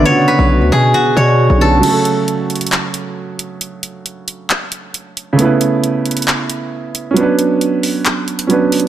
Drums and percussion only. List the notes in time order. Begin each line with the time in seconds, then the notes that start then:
1.83 closed hi-hat, crash
2.05 closed hi-hat
2.28 closed hi-hat
2.50 closed hi-hat
2.56 closed hi-hat
2.61 closed hi-hat
2.67 closed hi-hat
2.72 clap, closed hi-hat
2.94 closed hi-hat
3.39 closed hi-hat
3.61 closed hi-hat
3.83 closed hi-hat
4.06 closed hi-hat
4.28 closed hi-hat
4.50 clap, closed hi-hat
4.72 closed hi-hat
4.94 closed hi-hat
5.17 closed hi-hat
5.39 closed hi-hat
5.61 closed hi-hat
5.84 closed hi-hat
6.06 closed hi-hat
6.11 closed hi-hat
6.17 closed hi-hat
6.22 closed hi-hat
6.28 clap, closed hi-hat
6.50 closed hi-hat
6.95 closed hi-hat
7.17 closed hi-hat
7.39 closed hi-hat
7.61 closed hi-hat
7.83 open hi-hat
8.05 clap, closed hi-hat
8.28 closed hi-hat
8.39 closed hi-hat
8.50 closed hi-hat
8.72 closed hi-hat, open hi-hat
8.80 closed hi-hat